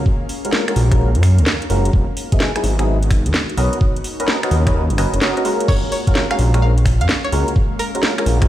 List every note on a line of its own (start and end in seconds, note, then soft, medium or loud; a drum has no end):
0.00 1.90 A#3 medium
0.00 1.89 C#4 medium
0.00 1.90 F5 medium
0.06 1.92 A#4 medium
0.06 kick loud
0.29 open hi-hat loud
0.45 0.64 G#3 medium
0.45 0.64 C#4 medium
0.45 0.64 F4 medium
0.45 0.64 F#4 medium
0.45 0.64 A#4 medium
0.45 closed hi-hat medium
0.53 snare loud
0.68 0.88 G#3 medium
0.68 0.88 C#4 medium
0.68 0.88 F4 medium
0.68 0.88 F#4 medium
0.68 0.88 A#4 medium
0.68 finger snap medium
0.68 closed hi-hat medium
0.76 1.17 A#1 loud
0.76 open hi-hat loud
0.92 1.10 G#3 medium
0.92 1.10 C#4 medium
0.92 1.10 F4 medium
0.92 1.10 F#4 medium
0.92 1.10 A#4 loud
0.92 finger snap soft
0.92 kick loud
0.92 closed hi-hat medium
1.15 1.40 F#2 medium
1.15 closed hi-hat medium
1.23 finger snap medium
1.23 open hi-hat loud
1.38 1.45 C#2 medium
1.38 closed hi-hat medium
1.46 snare loud
1.62 closed hi-hat soft
1.70 1.89 F#1 medium
1.70 1.91 G#3 medium
1.70 1.91 C#4 medium
1.70 1.91 F4 medium
1.70 1.91 F#4 medium
1.70 1.91 A#4 loud
1.70 open hi-hat loud
1.85 closed hi-hat medium
1.93 2.05 E1 loud
1.93 3.56 G#3 medium
1.93 3.56 B3 medium
1.93 5.65 D#4 medium
1.93 5.65 F#4 medium
1.93 kick loud
2.17 open hi-hat loud
2.32 2.52 F#3 medium
2.32 2.52 B3 medium
2.32 2.52 D#4 medium
2.32 2.52 E4 medium
2.32 2.52 G#4 loud
2.32 kick loud
2.32 closed hi-hat medium
2.40 snare loud
2.56 2.75 F#3 medium
2.56 2.75 B3 medium
2.56 2.75 D#4 medium
2.56 2.75 E4 medium
2.56 2.75 G#4 loud
2.56 finger snap medium
2.56 closed hi-hat medium
2.64 3.27 G#1 loud
2.64 open hi-hat loud
2.79 2.97 F#3 medium
2.79 2.97 B3 medium
2.79 2.97 D#4 medium
2.79 2.97 E4 medium
2.79 2.97 G#4 loud
2.79 finger snap soft
2.79 closed hi-hat medium
3.03 closed hi-hat medium
3.11 finger snap medium
3.11 kick loud
3.11 open hi-hat loud
3.26 3.32 E2 medium
3.26 closed hi-hat medium
3.34 snare loud
3.49 closed hi-hat soft
3.57 3.69 B1 medium
3.57 8.48 A#3 medium
3.57 8.48 C#4 medium
3.57 3.78 C#4 loud
3.57 3.78 F#4 medium
3.57 3.78 A#4 medium
3.57 3.78 B4 medium
3.57 3.78 D#5 loud
3.57 open hi-hat loud
3.73 closed hi-hat medium
3.81 kick loud
3.96 closed hi-hat soft
4.04 open hi-hat loud
4.20 4.40 C#4 medium
4.20 4.39 F#4 medium
4.20 4.39 A#4 medium
4.20 4.39 B4 medium
4.20 4.39 D#5 loud
4.20 closed hi-hat medium
4.28 snare loud
4.43 4.63 C#4 medium
4.43 4.63 F#4 medium
4.43 4.63 A#4 medium
4.43 4.63 B4 medium
4.43 4.63 D#5 medium
4.43 finger snap medium
4.43 closed hi-hat medium
4.51 4.92 D#2 loud
4.51 open hi-hat loud
4.67 4.85 C#4 medium
4.67 4.85 F#4 medium
4.67 4.85 A#4 medium
4.67 4.85 B4 medium
4.67 4.85 D#5 loud
4.67 finger snap medium
4.67 kick medium
4.67 closed hi-hat medium
4.90 5.06 F#1 medium
4.90 closed hi-hat soft
4.98 5.20 C#4 medium
4.98 5.20 F#4 medium
4.98 5.20 A#4 medium
4.98 5.20 B4 medium
4.98 5.20 D#5 medium
4.98 finger snap medium
4.98 open hi-hat loud
5.14 5.20 F#1 medium
5.14 closed hi-hat medium
5.21 5.35 C#4 medium
5.21 5.35 F#4 medium
5.21 5.35 A#4 medium
5.21 5.35 B4 medium
5.21 5.35 D#5 medium
5.21 snare loud
5.37 5.44 C#4 medium
5.37 5.44 F#4 medium
5.37 5.44 A#4 medium
5.37 5.44 B4 medium
5.37 5.44 D#5 loud
5.37 closed hi-hat soft
5.45 6.04 G#3 loud
5.45 6.04 C#4 medium
5.45 6.04 F4 medium
5.45 6.04 F#4 medium
5.45 6.04 A#4 loud
5.45 open hi-hat loud
5.60 closed hi-hat medium
5.68 5.80 F#1 loud
5.68 8.48 G#3 medium
5.68 5.85 C#5 medium
5.68 8.48 F5 medium
5.68 kick loud
5.68 crash medium
5.92 6.14 C#5 medium
5.92 open hi-hat loud
6.07 6.27 G#3 medium
6.07 6.27 C#4 medium
6.07 6.27 F4 medium
6.07 6.27 F#4 medium
6.07 6.27 A#4 medium
6.07 kick loud
6.07 closed hi-hat medium
6.15 snare loud
6.31 6.50 G#3 medium
6.31 6.50 C#4 medium
6.31 6.50 F4 medium
6.31 6.50 F#4 medium
6.31 6.50 A#4 medium
6.31 6.51 F5 medium
6.31 finger snap medium
6.31 closed hi-hat soft
6.39 7.03 A#1 loud
6.39 open hi-hat loud
6.54 6.72 G#3 medium
6.54 6.72 C#4 medium
6.54 6.72 F4 medium
6.54 6.72 F#4 medium
6.54 6.72 A#4 loud
6.54 finger snap medium
6.54 closed hi-hat medium
6.62 6.84 F5 medium
6.78 closed hi-hat soft
6.86 finger snap medium
6.86 kick loud
6.86 open hi-hat loud
7.01 7.07 F#2 medium
7.01 7.12 F5 medium
7.01 closed hi-hat medium
7.09 snare loud
7.24 7.44 C#5 medium
7.24 closed hi-hat soft
7.32 7.44 C#2 medium
7.32 7.53 G#3 loud
7.32 7.53 C#4 medium
7.32 7.53 F4 medium
7.32 7.53 F#4 medium
7.32 7.53 A#4 loud
7.32 open hi-hat loud
7.48 closed hi-hat medium
7.56 kick loud
7.79 8.09 A#4 medium
7.79 open hi-hat loud
7.95 8.15 G#3 medium
7.95 8.15 C#4 medium
7.95 8.15 F4 medium
7.95 8.15 F#4 medium
7.95 8.15 A#4 loud
7.95 closed hi-hat medium
8.03 snare loud
8.18 8.38 G#3 medium
8.18 8.38 C#4 medium
8.18 8.38 F4 medium
8.18 8.38 F#4 medium
8.18 8.38 A#4 medium
8.18 finger snap medium
8.18 closed hi-hat soft
8.26 8.48 A#1 loud
8.26 open hi-hat loud
8.42 8.48 G#3 medium
8.42 8.48 C#4 medium
8.42 8.48 F4 medium
8.42 8.48 F#4 medium
8.42 8.48 A#4 loud
8.42 finger snap medium
8.42 kick loud
8.42 closed hi-hat medium